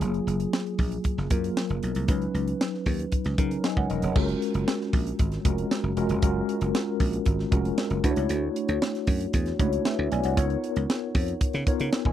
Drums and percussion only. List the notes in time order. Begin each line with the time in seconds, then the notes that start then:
0.01 closed hi-hat
0.14 closed hi-hat
0.28 closed hi-hat
0.40 closed hi-hat
0.53 snare
0.66 closed hi-hat
0.78 kick, open hi-hat
0.92 closed hi-hat
1.04 kick, closed hi-hat
1.18 snare
1.30 kick, closed hi-hat
1.44 closed hi-hat
1.57 snare
1.69 closed hi-hat
1.83 closed hi-hat
1.95 closed hi-hat
2.08 kick, closed hi-hat
2.22 closed hi-hat
2.35 closed hi-hat
2.48 closed hi-hat
2.61 snare
2.74 snare
2.86 kick, open hi-hat
2.99 closed hi-hat
3.12 kick, closed hi-hat
3.24 snare, closed hi-hat
3.38 kick, closed hi-hat
3.51 closed hi-hat
3.64 snare
3.77 kick
3.90 closed hi-hat
4.02 closed hi-hat
4.15 kick, crash
4.29 closed hi-hat
4.42 closed hi-hat
4.54 closed hi-hat
4.68 snare
4.81 snare
4.93 kick, open hi-hat
5.07 closed hi-hat
5.19 kick, closed hi-hat
5.32 snare, closed hi-hat
5.45 kick, closed hi-hat
5.58 closed hi-hat
5.71 snare
5.97 closed hi-hat
6.09 closed hi-hat
6.22 kick, closed hi-hat
6.49 closed hi-hat
6.61 closed hi-hat
6.75 snare
7.00 kick, open hi-hat
7.13 closed hi-hat
7.26 kick, closed hi-hat
7.39 snare
7.52 kick, closed hi-hat
7.65 closed hi-hat
7.78 snare
7.90 closed hi-hat
8.04 kick, closed hi-hat
8.16 closed hi-hat
8.29 closed hi-hat
8.56 closed hi-hat
8.68 closed hi-hat
8.82 snare
8.95 snare, closed hi-hat
9.07 kick, open hi-hat
9.21 closed hi-hat
9.33 kick, closed hi-hat
9.46 snare, closed hi-hat
9.59 kick, closed hi-hat
9.73 closed hi-hat
9.85 snare
10.12 closed hi-hat
10.24 closed hi-hat
10.37 kick, closed hi-hat
10.50 closed hi-hat
10.64 closed hi-hat
10.76 closed hi-hat
10.90 snare
11.15 kick, open hi-hat
11.28 closed hi-hat
11.41 kick, closed hi-hat
11.53 snare, closed hi-hat
11.67 kick, closed hi-hat
11.80 closed hi-hat
11.93 snare
12.05 kick